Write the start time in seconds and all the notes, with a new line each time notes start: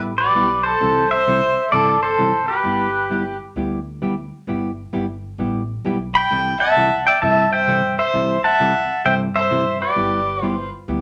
Already playing: A1 G3 B3 E4 G4
0.18 G4 B4 D5
0.35 B1 G3 B3 E4 G4
0.63 A4 C5
0.80 C2 C3 E3 G3 C4 E4 A4
1.09 C5 E5
1.27 C3 E3 G3 C4 E4 A4
1.71 G1 C3 E3 G3 C4 E4 A4 D5
2.01 A4 C5
2.18 C3 E3 G3 C4 E4 A4
2.47 G4 B4
2.64 G1 G3 B3 E4 G4
3.10 G3 B3 E4 G4
3.56 D2 G3 B3 E4 G4
4.02 G3 B3 E4 G4
4.47 G1 G3 B3 E4 G4
4.93 G1 G3 B3 E4 G4
5.38 A1 G3 B3 E4 G4
5.85 B1 G3 B3 E4 G4
6.14 G5 B5
6.30 C2 C3 E3 G3 C4 E4 A4
6.60 E5 F#5 A5
6.76 C3 E3 G3 C4 E4 A4
7.06 D5 E5 G5
7.22 G2 C3 E3 G3 C4 E4 A4 E5 A5
7.52 C5 E5 G5
7.67 C3 E3 G3 C4 E4 A4
7.99 C5 E5
8.13 C2 C3 E3 G3 C4 E4 A4
8.44 E5 F#5 A5
8.60 C3 E3 G3 C4 E4 A4
9.04 G2 C3 E3 G3 C4 E4 A4 C5 E5 G5
9.36 C5 E5
9.51 C3 E3 G3 C4 E4 A4
9.81 G4 B4 D5
9.96 G1 G3 B3 E4 G4
10.42 G3 B3 E4 F4 G4 C5
10.88 D2 G3 B3 E4 G4